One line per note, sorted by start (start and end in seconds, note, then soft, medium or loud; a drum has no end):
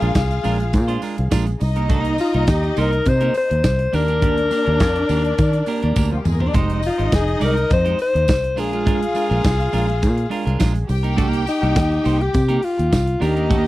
0.00 0.13 A#1 medium
0.00 0.14 G#3 medium
0.00 0.14 D4 medium
0.00 1.28 F4 medium
0.00 0.14 F4 medium
0.00 1.62 G#4 medium
0.00 0.15 A#4 medium
0.00 1.28 F5 loud
0.00 closed hi-hat soft
0.15 0.38 C2 medium
0.15 muted clean electric guitar stroke soft
0.15 kick loud
0.15 snare loud
0.15 closed hi-hat medium
0.15 tambourine medium
0.30 muted clean electric guitar stroke soft
0.30 closed hi-hat soft
0.43 0.76 A#1 medium
0.43 0.62 G#3 medium
0.43 0.59 D4 medium
0.43 0.59 F4 medium
0.43 0.58 A#4 medium
0.43 open hi-hat medium
0.43 tambourine medium
0.59 muted clean electric guitar stroke soft
0.59 closed hi-hat soft
0.73 0.96 A#2 loud
0.73 muted clean electric guitar stroke soft
0.73 kick loud
0.73 closed hi-hat medium
0.73 tambourine soft
0.88 1.00 G#3 medium
0.88 1.01 D4 medium
0.88 1.01 F4 medium
0.88 1.03 C5 medium
0.88 closed hi-hat medium
1.02 1.17 G#3 medium
1.02 1.17 D4 medium
1.02 1.17 F4 medium
1.02 1.16 A#4 medium
1.02 open hi-hat medium
1.02 tambourine soft
1.17 1.29 C2 medium
1.17 muted clean electric guitar stroke soft
1.17 closed hi-hat medium
1.31 1.54 A#1 medium
1.31 1.50 G#3 medium
1.31 1.46 D4 medium
1.31 1.46 F4 medium
1.31 1.45 A#4 medium
1.31 kick loud
1.31 snare loud
1.31 closed hi-hat medium
1.31 tambourine medium
1.46 muted clean electric guitar stroke soft
1.46 closed hi-hat soft
1.60 2.18 C2 loud
1.60 3.60 D#4 medium
1.60 3.60 D#5 loud
1.60 muted clean electric guitar stroke soft
1.60 open hi-hat medium
1.60 tambourine soft
1.76 1.88 A#3 soft
1.76 1.88 D#4 medium
1.76 1.89 G4 medium
1.76 1.89 A#4 medium
1.76 closed hi-hat soft
1.89 2.00 A3 medium
1.89 2.01 D4 medium
1.89 2.01 F#4 medium
1.89 2.01 A4 medium
1.89 kick loud
1.89 closed hi-hat medium
1.89 tambourine soft
2.00 2.16 A#3 medium
2.00 2.17 D#4 medium
2.00 2.17 G4 medium
2.00 2.17 A#4 medium
2.05 closed hi-hat soft
2.18 2.51 F4 medium
2.18 muted clean electric guitar stroke soft
2.18 open hi-hat medium
2.18 tambourine medium
2.34 2.45 C2 medium
2.34 2.48 A#3 medium
2.34 2.48 D#4 medium
2.34 2.47 G4 medium
2.34 2.47 A#4 medium
2.34 closed hi-hat soft
2.47 2.70 D#2 medium
2.47 2.80 G4 medium
2.47 kick loud
2.47 snare loud
2.47 closed hi-hat medium
2.47 tambourine medium
2.63 muted clean electric guitar stroke soft
2.63 closed hi-hat soft
2.76 3.00 C2 medium
2.76 2.95 A#3 medium
2.76 2.92 D#4 medium
2.76 2.91 G4 medium
2.76 3.10 A#4 loud
2.76 2.91 C5 medium
2.76 open hi-hat medium
2.76 tambourine medium
2.92 muted clean electric guitar stroke soft
2.92 closed hi-hat soft
3.05 3.29 C3 loud
3.05 3.36 C5 loud
3.05 muted clean electric guitar stroke soft
3.05 kick loud
3.05 closed hi-hat medium
3.05 tambourine medium
3.21 3.34 A#3 medium
3.21 3.34 D#4 medium
3.21 3.34 G4 medium
3.21 3.34 A#4 medium
3.21 closed hi-hat soft
3.34 3.96 C5 loud
3.34 muted clean electric guitar stroke soft
3.34 open hi-hat medium
3.34 tambourine soft
3.50 3.61 D#2 medium
3.50 muted clean electric guitar stroke soft
3.50 closed hi-hat medium
3.64 3.86 C2 medium
3.64 muted clean electric guitar stroke soft
3.64 kick loud
3.64 snare medium
3.64 closed hi-hat medium
3.64 tambourine medium
3.79 muted clean electric guitar stroke soft
3.79 closed hi-hat soft
3.93 4.50 D#2 loud
3.93 4.08 A#3 medium
3.93 4.08 D4 medium
3.93 6.02 D4 medium
3.93 4.07 G4 medium
3.93 4.07 A#4 medium
3.93 6.26 A#4 loud
3.93 6.02 D5 medium
3.93 open hi-hat medium
3.93 tambourine soft
4.08 4.20 A#3 soft
4.08 4.21 D4 medium
4.08 4.21 G4 medium
4.08 4.21 A#4 medium
4.08 closed hi-hat medium
4.21 4.40 A#3 medium
4.21 4.37 D4 medium
4.21 4.37 G4 medium
4.21 4.36 A#4 medium
4.21 kick loud
4.21 closed hi-hat medium
4.37 muted clean electric guitar stroke soft
4.37 closed hi-hat soft
4.51 4.66 A#3 medium
4.51 4.66 D4 medium
4.51 4.66 G4 medium
4.51 4.65 A#4 medium
4.51 open hi-hat medium
4.51 tambourine medium
4.66 4.81 D#2 medium
4.66 4.79 A#3 soft
4.66 4.80 D4 medium
4.66 4.80 G4 medium
4.66 4.79 A#4 medium
4.66 closed hi-hat soft
4.80 5.03 F2 medium
4.80 muted clean electric guitar stroke soft
4.80 kick loud
4.80 snare loud
4.80 closed hi-hat medium
4.80 tambourine medium
4.96 muted clean electric guitar stroke soft
4.96 closed hi-hat soft
5.09 5.32 D#2 medium
5.09 5.27 A#3 medium
5.09 5.24 D4 medium
5.09 5.24 G4 medium
5.09 5.23 A#4 medium
5.09 open hi-hat medium
5.09 tambourine medium
5.24 muted clean electric guitar stroke soft
5.24 closed hi-hat soft
5.38 5.61 D#3 loud
5.38 muted clean electric guitar stroke soft
5.38 kick loud
5.38 closed hi-hat medium
5.38 tambourine medium
5.53 muted clean electric guitar stroke soft
5.53 closed hi-hat soft
5.66 5.82 A#3 medium
5.66 5.82 D4 medium
5.66 5.81 G4 medium
5.66 5.81 A#4 medium
5.66 open hi-hat medium
5.66 tambourine soft
5.82 5.94 D#2 medium
5.82 5.95 A#3 medium
5.82 5.95 D4 soft
5.82 5.96 G4 medium
5.82 5.95 A#4 medium
5.82 closed hi-hat medium
5.96 6.19 D2 medium
5.96 6.15 A#3 medium
5.96 6.12 D4 medium
5.96 6.11 G4 medium
5.96 6.10 A#4 medium
5.96 kick medium
5.96 high tom soft
5.96 tambourine medium
6.12 6.19 F3 medium
6.12 6.18 F4 medium
6.12 muted clean electric guitar stroke soft
6.19 6.25 G3 medium
6.19 6.25 G4 medium
6.25 6.48 E2 medium
6.25 6.33 G#3 medium
6.25 6.33 G#4 medium
6.25 muted clean electric guitar stroke soft
6.25 mid tom medium
6.25 tambourine medium
6.34 6.41 A#3 medium
6.34 6.41 A#4 medium
6.40 6.53 A#3 soft
6.40 6.48 C4 medium
6.40 6.54 D4 soft
6.40 6.53 G4 medium
6.40 6.53 A#4 medium
6.40 6.48 C5 medium
6.40 floor tom medium
6.47 6.54 D4 medium
6.47 6.54 D5 loud
6.54 6.88 F1 loud
6.54 6.81 G#3 medium
6.54 6.81 D#4 medium
6.54 8.25 D#4 medium
6.54 6.81 G4 medium
6.54 6.81 C5 loud
6.54 8.25 D#5 medium
6.54 kick loud
6.54 closed hi-hat medium
6.54 tambourine soft
6.70 closed hi-hat soft
6.83 7.12 F4 medium
6.83 muted clean electric guitar stroke medium
6.83 open hi-hat medium
6.83 tambourine medium
6.98 7.09 G#1 medium
6.98 7.12 G#3 soft
6.98 7.12 D#4 medium
6.98 7.12 G4 medium
6.98 7.11 C5 medium
6.98 closed hi-hat soft
7.12 7.35 F1 medium
7.12 7.45 G#4 medium
7.12 kick loud
7.12 snare loud
7.12 closed hi-hat medium
7.12 tambourine medium
7.27 muted clean electric guitar stroke soft
7.27 closed hi-hat soft
7.40 7.64 C2 medium
7.40 7.59 G#3 medium
7.40 7.56 D#4 medium
7.40 7.55 G4 medium
7.40 7.55 D5 loud
7.40 open hi-hat medium
7.40 tambourine medium
7.44 7.72 A#4 loud
7.56 muted clean electric guitar stroke soft
7.56 closed hi-hat soft
7.70 7.93 F2 loud
7.70 7.99 C5 loud
7.70 muted clean electric guitar stroke soft
7.70 kick loud
7.70 closed hi-hat medium
7.70 tambourine medium
7.85 7.98 G#3 medium
7.85 7.98 D#4 medium
7.85 7.99 G4 medium
7.85 7.99 C5 medium
7.85 closed hi-hat soft
7.99 8.61 C5 loud
7.99 muted clean electric guitar stroke soft
7.99 open hi-hat medium
7.99 tambourine soft
8.14 8.29 D#2 medium
8.14 muted clean electric guitar stroke medium
8.14 closed hi-hat medium
8.28 8.58 C2 medium
8.28 muted clean electric guitar stroke soft
8.28 kick loud
8.28 snare loud
8.28 closed hi-hat medium
8.28 tambourine medium
8.43 muted clean electric guitar stroke soft
8.43 closed hi-hat soft
8.56 9.14 A#1 loud
8.56 8.73 G#3 medium
8.56 8.72 D4 medium
8.56 10.56 F4 medium
8.56 8.72 F4 medium
8.56 10.90 G#4 medium
8.56 8.71 A#4 medium
8.56 10.56 F5 medium
8.56 open hi-hat medium
8.56 tambourine soft
8.72 8.84 G#3 medium
8.72 8.85 D4 medium
8.72 8.86 F4 medium
8.72 8.85 A#4 medium
8.72 closed hi-hat soft
8.86 9.04 G#3 medium
8.86 9.01 D4 medium
8.86 9.01 F4 medium
8.86 9.00 A#4 medium
8.86 kick loud
8.86 closed hi-hat medium
8.86 tambourine soft
9.01 muted clean electric guitar stroke soft
9.01 closed hi-hat medium
9.15 9.30 G#3 medium
9.15 9.30 D4 medium
9.15 9.29 F4 medium
9.15 9.29 A#4 medium
9.15 open hi-hat medium
9.15 tambourine medium
9.30 9.41 A#1 medium
9.30 9.43 G#3 medium
9.30 9.43 D4 medium
9.30 9.44 F4 medium
9.30 9.43 A#4 medium
9.30 closed hi-hat soft
9.44 9.67 C2 medium
9.44 muted clean electric guitar stroke soft
9.44 kick loud
9.44 snare loud
9.44 closed hi-hat medium
9.44 tambourine medium
9.59 muted clean electric guitar stroke medium
9.59 closed hi-hat soft
9.73 10.05 A#1 medium
9.73 9.91 G#3 medium
9.73 9.88 D4 medium
9.73 9.87 F4 medium
9.73 9.87 A#4 loud
9.73 open hi-hat medium
9.73 tambourine medium
9.88 muted clean electric guitar stroke soft
9.88 closed hi-hat soft
10.01 10.25 A#2 loud
10.01 muted clean electric guitar stroke soft
10.01 kick loud
10.01 closed hi-hat medium
10.01 tambourine soft
10.17 muted clean electric guitar stroke soft
10.17 closed hi-hat soft
10.30 10.46 G#3 medium
10.30 10.45 D4 medium
10.30 10.45 F4 medium
10.30 10.44 A#4 medium
10.30 open hi-hat medium
10.46 10.57 C2 medium
10.46 10.58 G#3 medium
10.46 10.58 D4 medium
10.46 10.59 F4 medium
10.46 10.59 A#4 medium
10.46 closed hi-hat medium
10.59 10.83 A#1 medium
10.59 10.78 G#3 medium
10.59 10.75 D4 medium
10.59 10.74 F4 medium
10.59 10.73 A#4 medium
10.59 kick loud
10.59 snare loud
10.59 closed hi-hat medium
10.59 tambourine medium
10.75 muted clean electric guitar stroke soft
10.75 closed hi-hat soft
10.88 11.46 C2 medium
10.88 12.89 G4 loud
10.88 12.89 G5 loud
10.88 muted clean electric guitar stroke soft
10.88 open hi-hat medium
10.88 tambourine soft
11.03 11.15 A#3 medium
11.03 11.16 D#4 medium
11.03 11.16 G4 medium
11.03 11.17 A#4 medium
11.03 closed hi-hat medium
11.17 11.29 A3 medium
11.17 11.28 D4 medium
11.17 11.29 F#4 medium
11.17 11.29 A4 medium
11.17 kick loud
11.17 closed hi-hat medium
11.17 tambourine soft
11.28 11.44 A#3 medium
11.28 11.45 D#4 medium
11.28 11.45 G4 medium
11.28 11.45 A#4 medium
11.33 closed hi-hat soft
11.46 12.23 D#4 loud
11.46 muted clean electric guitar stroke soft
11.46 open hi-hat medium
11.46 tambourine medium
11.61 11.73 C2 medium
11.61 11.76 A#3 medium
11.61 11.76 D#4 medium
11.61 11.75 G4 medium
11.61 11.75 A#4 medium
11.61 closed hi-hat soft
11.76 11.99 D#2 medium
11.76 kick loud
11.76 snare loud
11.76 closed hi-hat medium
11.76 tambourine medium
11.90 muted clean electric guitar stroke soft
11.90 closed hi-hat soft
12.04 12.28 C2 medium
12.04 12.23 A#3 medium
12.04 12.19 D#4 medium
12.04 12.19 G4 medium
12.04 12.19 C5 medium
12.04 open hi-hat medium
12.04 tambourine medium
12.19 12.66 G4 loud
12.19 muted clean electric guitar stroke soft
12.19 closed hi-hat soft
12.33 12.57 C3 loud
12.33 muted clean electric guitar stroke soft
12.33 kick loud
12.33 closed hi-hat medium
12.33 tambourine medium
12.48 12.61 A#3 medium
12.48 12.61 D#4 medium
12.48 12.62 G4 medium
12.48 12.62 A#4 medium
12.48 closed hi-hat medium
12.62 13.23 F4 loud
12.62 muted clean electric guitar stroke soft
12.62 open hi-hat medium
12.78 12.90 D#2 medium
12.78 muted clean electric guitar stroke medium
12.78 closed hi-hat medium
12.91 13.15 C2 medium
12.91 muted clean electric guitar stroke soft
12.91 kick medium
12.91 snare loud
12.91 closed hi-hat medium
12.91 tambourine medium
13.07 muted clean electric guitar stroke soft
13.07 closed hi-hat soft
13.20 13.67 D#2 medium
13.20 13.36 A#3 medium
13.20 13.36 D4 medium
13.20 13.67 D#4 medium
13.20 13.35 G4 medium
13.20 13.67 G4 loud
13.20 13.34 A#4 medium
13.20 13.67 D#5 loud
13.20 open hi-hat medium
13.20 tambourine medium
13.36 13.48 A#3 soft
13.36 13.48 D4 soft
13.36 13.49 G4 medium
13.36 13.49 A#4 medium
13.36 closed hi-hat soft
13.49 13.67 A#3 medium
13.49 13.65 D4 medium
13.49 13.64 G4 medium
13.49 13.64 A#4 medium
13.49 kick loud
13.49 closed hi-hat medium
13.49 tambourine soft